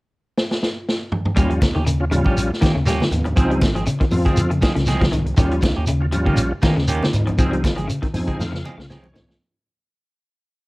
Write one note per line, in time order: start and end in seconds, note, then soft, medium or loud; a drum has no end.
0.37 snare medium
0.51 snare medium
0.63 snare medium
0.89 snare medium
1.12 mid tom medium
1.25 mid tom medium
1.36 1.62 D#2 medium
1.36 1.60 G3 medium
1.36 1.46 G3 medium
1.36 1.53 A#3 medium
1.36 1.61 C#4 medium
1.36 1.53 C#4 medium
1.36 1.61 F4 medium
1.36 1.53 G4 medium
1.36 kick medium
1.36 closed hi-hat medium
1.36 shekere medium
1.50 1.67 F3 medium
1.50 closed hi-hat soft
1.62 1.75 C#2 medium
1.62 muted clean electric guitar stroke soft
1.62 kick medium
1.62 snare medium
1.62 closed hi-hat medium
1.62 high conga medium
1.62 shekere soft
1.75 2.22 D#2 medium
1.75 1.83 D#3 medium
1.75 1.85 C#4 soft
1.75 1.86 G4 medium
1.75 high conga medium
1.87 2.04 C#3 medium
1.87 muted clean electric guitar stroke soft
1.87 closed hi-hat medium
1.87 shekere medium
2.00 2.05 C#4 medium
2.00 2.05 F4 medium
2.00 muted clean electric guitar stroke soft
2.11 2.29 C#3 medium
2.11 2.51 G3 medium
2.11 2.51 C#4 medium
2.11 2.52 F4 medium
2.11 muted clean electric guitar stroke soft
2.11 closed hi-hat medium
2.11 low conga medium
2.11 shekere soft
2.25 2.49 A#1 medium
2.25 2.40 C#4 medium
2.25 2.40 G4 medium
2.25 muted clean electric guitar stroke medium
2.25 kick medium
2.25 high conga medium
2.37 closed hi-hat medium
2.37 shekere medium
2.51 muted clean electric guitar stroke soft
2.51 muted fingered electric bass stroke soft
2.51 snare soft
2.61 2.71 D#3 medium
2.61 2.75 D#3 medium
2.61 2.75 A#3 medium
2.61 2.76 C#4 medium
2.61 2.73 G4 medium
2.61 kick medium
2.61 snare medium
2.61 closed hi-hat medium
2.61 high conga medium
2.61 shekere soft
2.75 2.99 D#2 medium
2.75 2.83 C#3 medium
2.75 muted clean electric guitar stroke soft
2.86 3.04 G3 medium
2.86 3.03 A#3 medium
2.86 3.03 C#4 medium
2.86 3.03 G4 loud
2.86 snare soft
2.86 closed hi-hat medium
2.86 shekere medium
3.00 snare medium
3.00 high conga medium
3.11 3.35 D#2 medium
3.11 muted clean electric guitar stroke soft
3.11 closed hi-hat medium
3.11 low conga medium
3.11 shekere soft
3.25 muted clean electric guitar stroke soft
3.25 closed hi-hat soft
3.25 low conga medium
3.36 3.60 C#2 medium
3.36 3.53 F3 medium
3.36 3.61 F3 medium
3.36 3.53 C4 medium
3.36 3.61 C4 medium
3.36 3.61 D#4 loud
3.36 3.53 G#4 medium
3.36 muted clean electric guitar stroke medium
3.36 kick loud
3.36 closed hi-hat medium
3.36 shekere medium
3.50 3.68 G3 medium
3.50 closed hi-hat soft
3.61 3.85 G#1 medium
3.61 muted clean electric guitar stroke soft
3.61 kick medium
3.61 snare medium
3.61 closed hi-hat medium
3.61 high conga medium
3.61 shekere soft
3.75 3.83 F3 medium
3.75 3.86 G#3 soft
3.75 3.86 C4 medium
3.75 3.86 G#4 medium
3.75 closed hi-hat soft
3.87 3.96 C#3 medium
3.87 muted clean electric guitar stroke soft
3.87 closed hi-hat medium
3.87 shekere medium
4.00 4.18 D#3 medium
4.00 4.05 C4 medium
4.00 4.05 F4 medium
4.00 muted clean electric guitar stroke soft
4.00 kick medium
4.00 closed hi-hat soft
4.11 4.25 F2 medium
4.11 4.51 F3 medium
4.11 4.51 C4 medium
4.11 4.52 F4 medium
4.11 muted clean electric guitar stroke soft
4.11 open hi-hat medium
4.11 low conga medium
4.11 shekere soft
4.25 4.40 F3 medium
4.25 4.40 G#3 medium
4.25 4.40 C4 medium
4.25 4.40 G#4 medium
4.25 kick medium
4.25 closed hi-hat soft
4.25 high conga medium
4.37 4.61 F2 loud
4.37 closed hi-hat medium
4.37 high conga medium
4.37 shekere medium
4.50 4.68 C#3 medium
4.50 muted clean electric guitar stroke soft
4.50 closed hi-hat soft
4.61 4.76 F3 medium
4.61 4.74 G#3 medium
4.61 4.74 C4 medium
4.61 4.74 G#4 medium
4.61 muted fingered electric bass stroke soft
4.61 kick medium
4.61 snare medium
4.61 closed hi-hat medium
4.61 high conga medium
4.61 shekere soft
4.75 5.34 C2 medium
4.75 4.93 C#3 medium
4.75 muted clean electric guitar stroke soft
4.75 snare soft
4.75 closed hi-hat soft
4.86 5.04 F3 medium
4.86 5.04 G#3 medium
4.86 5.04 C4 medium
4.86 5.04 G#4 medium
4.86 snare soft
4.86 closed hi-hat medium
4.86 shekere medium
5.01 5.09 F3 medium
5.01 kick medium
5.01 snare medium
5.01 closed hi-hat soft
5.01 high conga medium
5.12 5.30 D#3 medium
5.12 muted clean electric guitar stroke soft
5.12 closed hi-hat soft
5.12 low conga medium
5.12 shekere soft
5.26 muted clean electric guitar stroke soft
5.26 closed hi-hat soft
5.37 5.62 D#2 medium
5.37 5.54 D#3 medium
5.37 5.47 D#3 medium
5.37 5.62 G3 medium
5.37 5.54 C#4 medium
5.37 5.62 C#4 medium
5.37 5.62 F4 loud
5.37 5.54 G4 medium
5.37 muted clean electric guitar stroke medium
5.37 kick medium
5.37 closed hi-hat medium
5.37 shekere medium
5.51 5.69 F3 medium
5.51 closed hi-hat soft
5.62 5.76 C#2 medium
5.62 muted clean electric guitar stroke soft
5.62 kick medium
5.62 snare medium
5.62 closed hi-hat medium
5.62 high conga medium
5.62 shekere soft
5.76 6.24 D#2 medium
5.76 5.86 A#3 soft
5.76 5.86 C#4 medium
5.76 5.86 G4 soft
5.87 6.06 C#3 medium
5.87 muted clean electric guitar stroke soft
5.87 closed hi-hat medium
5.87 shekere medium
6.01 6.06 C#4 medium
6.01 6.06 F4 medium
6.01 muted clean electric guitar stroke soft
6.12 6.30 F3 medium
6.12 6.52 G3 medium
6.12 6.53 C#4 medium
6.12 6.53 F4 medium
6.12 muted clean electric guitar stroke soft
6.12 closed hi-hat medium
6.12 low conga medium
6.12 shekere soft
6.25 6.50 A#1 medium
6.25 6.41 D#3 medium
6.25 6.41 A#3 medium
6.25 6.41 C#4 medium
6.25 6.40 G4 medium
6.25 kick medium
6.25 high conga medium
6.37 closed hi-hat medium
6.37 shekere loud
6.51 muted clean electric guitar stroke soft
6.51 muted fingered electric bass stroke soft
6.62 6.77 D#3 medium
6.62 6.73 D#3 medium
6.62 6.76 D#3 medium
6.62 6.76 A#3 medium
6.62 6.76 C#4 medium
6.62 6.76 G4 medium
6.62 kick medium
6.62 snare medium
6.62 closed hi-hat medium
6.62 high conga loud
6.62 shekere soft
6.76 7.00 D#2 medium
6.76 6.85 C#3 medium
6.76 muted clean electric guitar stroke soft
6.76 snare soft
6.88 7.04 D#3 medium
6.88 7.05 A#3 medium
6.88 7.05 C#4 loud
6.88 7.05 G4 medium
6.88 closed hi-hat medium
6.88 shekere medium
7.03 snare medium
7.03 high conga medium
7.13 7.37 G#2 medium
7.13 muted clean electric guitar stroke soft
7.13 closed hi-hat medium
7.13 high conga medium
7.13 low conga medium
7.13 shekere soft
7.27 7.45 F3 medium
7.27 muted clean electric guitar stroke soft
7.27 closed hi-hat soft
7.27 low conga medium
7.38 7.62 C#2 loud
7.38 7.62 F3 medium
7.38 7.55 F3 medium
7.38 7.55 G#3 medium
7.38 7.63 C4 medium
7.38 7.55 C4 medium
7.38 7.63 D#4 loud
7.38 7.55 G#4 medium
7.38 kick medium
7.38 closed hi-hat medium
7.38 shekere medium
7.51 7.69 G3 medium
7.51 closed hi-hat soft
7.64 7.88 G#1 medium
7.64 muted clean electric guitar stroke soft
7.64 kick medium
7.64 snare medium
7.64 closed hi-hat medium
7.64 high conga medium
7.64 shekere soft
7.76 7.85 F3 medium
7.76 7.88 G#3 soft
7.76 7.88 C4 soft
7.76 7.88 G#4 medium
7.76 closed hi-hat soft
7.76 high conga medium
7.88 7.98 C#3 medium
7.88 muted clean electric guitar stroke soft
7.88 closed hi-hat medium
7.88 shekere medium
8.02 8.20 D#3 medium
8.02 8.07 C4 medium
8.02 8.08 D#4 medium
8.02 muted clean electric guitar stroke soft
8.02 kick medium
8.02 closed hi-hat soft
8.14 8.27 F2 medium
8.14 8.53 F3 medium
8.14 8.54 C4 medium
8.14 8.54 D#4 medium
8.14 8.38 G#5 medium
8.14 muted clean electric guitar stroke soft
8.14 open hi-hat medium
8.14 low conga medium
8.14 shekere soft
8.27 8.43 F3 medium
8.27 8.42 G#3 medium
8.27 8.42 C4 medium
8.27 8.42 G#4 medium
8.27 kick medium
8.27 closed hi-hat soft
8.27 high conga medium
8.39 8.63 F2 medium
8.39 8.86 F5 medium
8.39 snare medium
8.39 high conga medium
8.39 shekere medium
8.52 8.70 C#3 medium
8.52 muted clean electric guitar stroke soft
8.52 snare soft
8.64 8.78 F3 medium
8.64 8.77 G#3 medium
8.64 8.78 C4 medium
8.64 8.77 G#4 medium
8.64 muted fingered electric bass stroke soft
8.64 high conga medium
8.64 shekere soft
8.78 9.36 C2 medium
8.78 8.95 C#3 medium
8.78 snare medium
8.90 9.06 F3 medium
8.90 9.06 G#3 loud
8.90 9.06 C4 loud
8.90 9.06 G#4 medium
8.90 9.37 C#5 medium
8.90 snare medium
8.90 high conga medium
8.90 shekere medium
9.03 9.11 F3 medium
9.03 high conga medium
9.14 9.31 D#3 medium
9.14 muted clean electric guitar stroke soft
9.14 snare medium
9.14 low conga loud
9.14 shekere soft
9.28 muted clean electric guitar stroke soft
9.28 snare medium
9.28 low conga medium